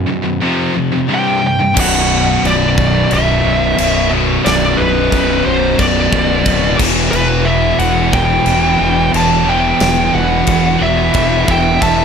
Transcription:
Already playing: overdriven electric guitar B1 F#2 B2
0.06 distorted electric guitar B1 F#2
0.22 distorted electric guitar B1 F#2
0.40 distorted electric guitar F2 C3 F3
0.74 distorted electric guitar F2 C3
0.92 distorted electric guitar F2 C3
1.09 distorted electric guitar C2 G2 C3
1.14 lead electric guitar G5
1.43 distorted electric guitar C2 G2
1.47 lead electric guitar G5
1.60 distorted electric guitar C2 G2
1.76 fingered electric bass B0, distorted electric guitar B1 F#2 B2, kick, crash
1.80 lead electric guitar F#5
2.44 fingered electric bass B0, lead electric guitar D5, crash
2.78 kick
3.11 fingered electric bass B0, overdriven electric guitar B1 F#2 B2, lead electric guitar E5, crash
3.43 fingered electric bass B0, distorted electric guitar B1 F#2 B2
3.77 fingered electric bass B0, distorted electric guitar B1 F#2 B2, crash
4.10 distorted electric guitar B1 F#2 B2
4.42 fingered electric bass B0, distorted electric guitar B1 F#2 B2, lead electric guitar D5, crash
4.47 snare
4.77 fingered electric bass B0, lead electric guitar B4
5.12 fingered electric bass B0, kick, crash
5.45 fingered electric bass B0, lead electric guitar C5
5.77 fingered electric bass B0, overdriven electric guitar B1 F#2 B2, lead electric guitar D5, kick, crash
6.12 fingered electric bass B0, distorted electric guitar B1 F#2 B2, kick
6.44 fingered electric bass D1, distorted electric guitar B1 F#2 B2, kick, crash
6.78 fingered electric bass E1, distorted electric guitar E2 B2 E3, kick, crash
7.11 fingered electric bass E1, lead electric guitar B4, crash
7.45 lead electric guitar E5
7.79 fingered electric bass E1, lead electric guitar F#5, crash
8.11 overdriven electric guitar B2 E3, lead electric guitar G5, kick
8.15 overdriven electric guitar E2
8.45 fingered electric bass E1, distorted electric guitar E2 B2 E3, crash
8.79 fingered electric bass E1, distorted electric guitar E2 B2 E3
9.11 fingered electric bass E1, distorted electric guitar E2 B2 E3, crash
9.17 lead electric guitar A5
9.45 distorted electric guitar E2 B2 E3
9.50 lead electric guitar G5
9.80 fingered electric bass E1, snare, crash
10.14 fingered electric bass E1, lead electric guitar F#5
10.47 fingered electric bass E1, kick, crash
10.79 fingered electric bass E1, overdriven electric guitar E2 B2 E3
10.83 lead electric guitar E5
11.13 fingered electric bass E1, distorted electric guitar E2 B2 E3, kick, crash
11.46 fingered electric bass E1, distorted electric guitar E2 B2 E3, kick
11.50 lead electric guitar E5 G5
11.80 fingered electric bass E1, distorted electric guitar E2 B2 E3, lead electric guitar E5 A5, kick, crash

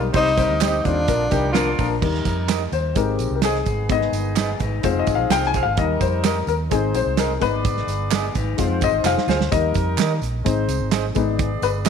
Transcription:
Already playing: fingered electric bass B1
0.13 fingered electric bass C2, horn section G3 D#4 C5, upright piano G3 C4 D#4 C5, tenor saxophone D#4, kick, closed hi-hat, tambourine
0.26 snare
0.37 upright piano G3 C4 D#4 C5, horn section A#3 G4 A#4, kick, closed hi-hat, tambourine
0.49 fingered electric bass D2
0.60 horn section D#3 C4 G4, upright piano G3 C4 D#4 C5, clean electric guitar D#4 G4 C5 D#5, tenor saxophone D#4, snare, clap, closed hi-hat, tambourine
0.83 fingered electric bass D#2, horn section D3 A#3 F4, upright piano G3 C4 D#4 C5, tenor saxophone D4, kick, closed hi-hat, tambourine
1.08 fingered electric bass A#1, upright piano F3 A#3 D4 A#4, kick, closed hi-hat, tambourine
1.30 fingered electric bass C2, upright piano F3 A#3 D4 A#4, horn section G3 D#4 G4, kick, closed hi-hat, tambourine
1.53 horn section D3 A#3 F4, upright piano F3 A#3 D4 A#4, clean electric guitar D4 F4 A#4, snare, clap, closed hi-hat, tambourine
1.57 clean electric guitar D5
1.78 fingered electric bass A#1, upright piano F3 A#3 D4 A#4, kick, open hi-hat, tambourine
2.00 fingered electric bass D#2, horn section G3 D#4 A#4, upright piano G3 A#3 D#4, kick, crash
2.14 snare
2.25 fingered electric bass F2, kick, snare, closed hi-hat, tambourine
2.48 clean electric guitar D#4 G4 A#4 D#5, snare, clap, closed hi-hat, tambourine
2.72 fingered electric bass D#2, upright piano C5, closed hi-hat, tambourine
2.93 fingered electric bass G#1, horn section D#3 C4 G4, upright piano G#3 C4 D#4 A#4, kick, closed hi-hat, tambourine
3.19 fingered electric bass A#1, closed hi-hat, tambourine
3.31 fingered electric bass C2
3.35 upright piano A#4
3.42 clean electric guitar D#4 G#4 C5 D#5, upright piano G#4, snare, clap, closed hi-hat, tambourine
3.55 snare
3.66 fingered electric bass G#1, horn section D#3 B3 G#4, kick, closed hi-hat, tambourine
3.89 upright piano G#3 B3 D#4 D#5, kick, closed hi-hat, tambourine
4.01 snare
4.12 fingered electric bass G1, closed hi-hat, tambourine
4.36 clean electric guitar B3 D#4 G#4 B4 D#5, snare, clap, closed hi-hat, tambourine
4.59 fingered electric bass G#1, clean electric guitar D#4 B4, kick, closed hi-hat, tambourine
4.83 fingered electric bass F1, horn section F3 C4 G#4, upright piano G#3 C4 F4 C5, clean electric guitar D#4 C5, kick, closed hi-hat, tambourine
4.99 upright piano D#5
5.07 fingered electric bass G#1, kick, closed hi-hat, tambourine
5.15 fingered electric bass A#1, upright piano F5
5.30 fingered electric bass C2, clean electric guitar F4 G#4 C5 F5, upright piano G5, snare, clap, closed hi-hat, tambourine
5.43 upright piano G#5, snare
5.54 clean electric guitar F4 G#4 C5 F5, kick, closed hi-hat, tambourine
5.63 fingered electric bass G#1, upright piano F5
5.77 fingered electric bass D#2, horn section G3 D#4 A#4, upright piano G3 A#3 D#4 D#5, kick, closed hi-hat
6.01 fingered electric bass F2, upright piano C5, kick, closed hi-hat, tambourine
6.24 clean electric guitar D#4 G4 A#4 D#5, upright piano A#4, snare, clap, closed hi-hat, tambourine
6.47 fingered electric bass D#2, upright piano A#4, closed hi-hat, tambourine
6.70 fingered electric bass G#1, horn section G#3 D#4 C5, upright piano G#3 C4 D#4 G#4, kick, closed hi-hat, tambourine
6.94 fingered electric bass A#1, upright piano C5, closed hi-hat, tambourine
7.06 fingered electric bass C2
7.17 clean electric guitar D#4 G#4 C5 D#5, upright piano A#4, snare, clap, closed hi-hat, tambourine
7.40 fingered electric bass G#1, upright piano G#3 B3 D#4 B4, horn section B3 G#4 D5, kick, closed hi-hat, tambourine
7.65 kick, closed hi-hat, tambourine
7.77 snare
7.87 fingered electric bass G1, closed hi-hat, tambourine
8.11 clean electric guitar B3 D#4 G#4 B4 D#5, snare, clap, closed hi-hat, tambourine
8.35 fingered electric bass G#1, clean electric guitar D#4 B4, kick, closed hi-hat, tambourine
8.57 fingered electric bass F1, upright piano G#3 C4 F4, horn section G#3 F4 C5, clean electric guitar D#4 C5, kick, closed hi-hat, tambourine
8.68 fingered electric bass F2
8.81 fingered electric bass G1, upright piano D#5, kick, closed hi-hat, tambourine
8.92 fingered electric bass G#1
9.04 fingered electric bass F1, clean electric guitar F4 G#4 C5 F5, upright piano F5, snare, clap, tambourine
9.18 snare
9.27 fingered electric bass D2, clean electric guitar F4 G#4 C5 F5, upright piano C5, snare, tambourine
9.41 snare
9.51 fingered electric bass D#2, upright piano G3 A#3 D#4 D#5, horn section G3 D#4 A#4, kick, closed hi-hat, tambourine
9.74 fingered electric bass F2, kick, closed hi-hat, tambourine
9.98 fingered electric bass D#3, clean electric guitar D#4 G4 A#4 D#5, snare, clap, closed hi-hat, tambourine
10.22 fingered electric bass A#1, closed hi-hat, tambourine
10.44 fingered electric bass G#1, upright piano G#3 C4 D#4, horn section G#3 D#4 C5, kick, closed hi-hat, tambourine
10.68 fingered electric bass C2, closed hi-hat, tambourine
10.80 fingered electric bass G#1
10.91 clean electric guitar D#4 G#4 C5 D#5, snare, clap, closed hi-hat, tambourine
11.15 fingered electric bass G#1, upright piano G#3 B3 D#4, horn section B3 G#4 D5, kick, closed hi-hat, tambourine
11.39 kick, closed hi-hat
11.62 fingered electric bass G1, upright piano B4, closed hi-hat, tambourine
11.85 clean electric guitar D#4 G#4, clap, closed hi-hat, tambourine

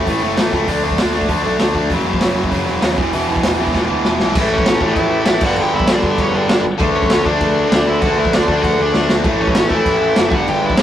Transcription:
0.07 picked electric bass A1, overdriven electric guitar A2 E3 A3, kick, open hi-hat
0.22 picked electric bass F#1, overdriven electric guitar A2 E3 A3
0.37 picked electric bass A1, overdriven electric guitar A2 E3 A3, snare, open hi-hat
0.52 picked electric bass C#2, overdriven electric guitar A2 E3 A3, kick
0.68 picked electric bass D2, overdriven electric guitar D3 A3 D4, kick, open hi-hat
0.84 picked electric bass D2, overdriven electric guitar D3 A3 D4
0.91 kick
0.98 picked electric bass D2, overdriven electric guitar D3 A3 D4, snare, open hi-hat
1.14 picked electric bass D2, overdriven electric guitar D3 A3 D4
1.21 kick
1.29 picked electric bass D2, overdriven electric guitar D3 A3 D4, kick, open hi-hat
1.43 picked electric bass B1, overdriven electric guitar D3 A3 D4
1.58 picked electric bass D2, overdriven electric guitar D3 A3 D4, snare, open hi-hat
1.74 picked electric bass D2, overdriven electric guitar D3 A3 D4, kick
1.90 picked electric bass F#1, overdriven electric guitar F#2 C#3 F#3, kick, open hi-hat
2.04 picked electric bass F#1, overdriven electric guitar F#2 C#3 F#3
2.13 kick
2.20 picked electric bass F#1, overdriven electric guitar F#2 C#3 F#3, snare, open hi-hat
2.36 picked electric bass F#1, overdriven electric guitar F#2 C#3 F#3
2.44 kick
2.51 picked electric bass F#1, overdriven electric guitar F#2 C#3 F#3, kick, open hi-hat
2.67 picked electric bass E1, overdriven electric guitar F#2 C#3 F#3
2.80 picked electric bass D#2, overdriven electric guitar F#2 C#3 F#3, snare, open hi-hat
2.97 picked electric bass E1, overdriven electric guitar E2 B2 E3, kick
3.13 picked electric bass E1, overdriven electric guitar E2 B2 E3, open hi-hat
3.29 picked electric bass E1, overdriven electric guitar E2 B2 E3
3.36 kick
3.43 picked electric bass E1, overdriven electric guitar E2 B2 E3, snare, open hi-hat
3.60 picked electric bass E1, overdriven electric guitar E2 B2 E3
3.67 kick
3.74 picked electric bass E1, overdriven electric guitar E2 B2 E3, kick, snare
3.90 picked electric bass D2, overdriven electric guitar E2 B2 E3
4.05 picked electric bass E1, overdriven electric guitar E2 B2 E3, snare
4.20 picked electric bass B1, overdriven electric guitar E2 B2 E3, snare
4.35 picked electric bass A1, overdriven electric guitar A2 E3, kick, crash
4.39 overdriven electric guitar A3
4.51 picked electric bass A1, lead electric guitar C#4 C#5
4.58 kick
4.66 picked electric bass A1, snare, crash
4.80 picked electric bass A1, overdriven electric guitar A2 E3 A3, kick
4.86 lead electric guitar E4 E5
4.96 picked electric bass A1, kick, crash
5.26 picked electric bass A1, overdriven electric guitar A2 E3 A3, snare, crash
5.41 picked electric bass G1, overdriven electric guitar G2 D3 G3, lead electric guitar F#4, kick, crash
5.46 lead electric guitar F#5
5.56 picked electric bass G1, crash
5.61 lead electric guitar G4 G5
5.72 picked electric bass G1, lead electric guitar E4
5.77 lead electric guitar E5, kick
5.87 picked electric bass G1, overdriven electric guitar G2 D3 G3, snare, crash
5.93 lead electric guitar D4 D5
6.03 picked electric bass G1, kick
6.18 picked electric bass G1, lead electric guitar C#4 C#5, kick, crash
6.33 picked electric bass G1, overdriven electric guitar G2 D3 G3, lead electric guitar D4 D5
6.48 picked electric bass G1, snare, crash
6.64 picked electric bass G1
6.79 picked electric bass D2, overdriven electric guitar D3 A3 D4, kick, crash
6.93 picked electric bass D2, lead electric guitar C#4 C#5
7.03 kick
7.10 picked electric bass D2, snare, crash
7.25 picked electric bass D2, overdriven electric guitar D3 A3 D4, lead electric guitar D4 D5, kick
7.41 picked electric bass D2, kick, crash
7.70 picked electric bass D2, overdriven electric guitar D3 A3 D4, snare, crash
7.87 picked electric bass D2, lead electric guitar E4 E5
8.01 picked electric bass D2, overdriven electric guitar D3 A3 D4, lead electric guitar F#4 F#5, kick, crash
8.16 picked electric bass D2, lead electric guitar E4 E5
8.25 kick
8.32 picked electric bass D2, lead electric guitar D4 D5, snare, crash
8.47 picked electric bass D2, overdriven electric guitar D3 A3 D4, kick
8.62 picked electric bass D2, lead electric guitar F#4 F#5, kick, crash
8.79 picked electric bass D2, lead electric guitar D4 D5
8.93 picked electric bass D2, overdriven electric guitar D3 A3 D4, snare
9.09 picked electric bass D2, snare
9.22 picked electric bass A1, overdriven electric guitar A2 E3 A3, kick, crash
9.40 picked electric bass A1, lead electric guitar C#4 C#5
9.47 kick
9.55 picked electric bass A1, snare, crash
9.69 picked electric bass A1, overdriven electric guitar E3 A3, lead electric guitar E4 E5, kick
9.74 overdriven electric guitar A2
9.86 picked electric bass A1, kick, crash
10.16 picked electric bass F#1, overdriven electric guitar A2 E3, snare, crash
10.20 overdriven electric guitar A3
10.31 picked electric bass G1, overdriven electric guitar G2 D3, lead electric guitar F#4 F#5, kick
10.35 overdriven electric guitar G3
10.48 picked electric bass G1, lead electric guitar G4 G5, crash
10.63 picked electric bass G1, lead electric guitar E4 E5
10.70 kick
10.77 picked electric bass G1, overdriven electric guitar G2 D3, lead electric guitar D4 D5, snare, crash

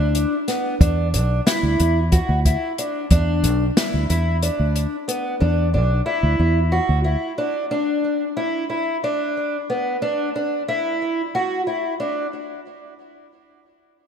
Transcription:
Already playing: twelve-string acoustic guitar D4
0.00 fingered electric bass D2
0.15 closed hi-hat
0.48 twelve-string acoustic guitar B3, snare, closed hi-hat
0.81 fingered electric bass E2, twelve-string acoustic guitar D4, kick, closed hi-hat
1.14 fingered electric bass B1, twelve-string acoustic guitar D4, closed hi-hat
1.46 twelve-string acoustic guitar E4, snare, closed hi-hat
1.63 fingered electric bass D2
1.80 fingered electric bass E2, closed hi-hat
2.12 twelve-string acoustic guitar F#4, kick, closed hi-hat
2.29 fingered electric bass D2
2.45 twelve-string acoustic guitar E4, kick, closed hi-hat
2.78 twelve-string acoustic guitar D4, closed hi-hat
3.11 fingered electric bass E2, twelve-string acoustic guitar D4, kick, closed hi-hat
3.43 fingered electric bass B1, closed hi-hat
3.77 twelve-string acoustic guitar E4, snare, closed hi-hat
3.94 fingered electric bass D2
4.10 fingered electric bass E2, twelve-string acoustic guitar E4, closed hi-hat
4.43 twelve-string acoustic guitar D4, closed hi-hat
4.60 fingered electric bass D2
4.76 closed hi-hat
5.08 twelve-string acoustic guitar B3, closed hi-hat
5.41 fingered electric bass E2, twelve-string acoustic guitar D4
5.74 fingered electric bass B1, twelve-string acoustic guitar D4
6.06 twelve-string acoustic guitar E4
6.23 fingered electric bass D2
6.40 fingered electric bass E2
6.72 twelve-string acoustic guitar F#4
6.89 fingered electric bass D2
7.04 twelve-string acoustic guitar E4
7.38 twelve-string acoustic guitar D4
7.71 twelve-string acoustic guitar D4
8.37 twelve-string acoustic guitar E4
8.70 twelve-string acoustic guitar E4
9.04 twelve-string acoustic guitar D4
9.70 twelve-string acoustic guitar B3
10.02 twelve-string acoustic guitar D4
10.36 twelve-string acoustic guitar D4
10.68 twelve-string acoustic guitar E4
11.35 twelve-string acoustic guitar F#4
11.67 twelve-string acoustic guitar E4
12.00 twelve-string acoustic guitar D4

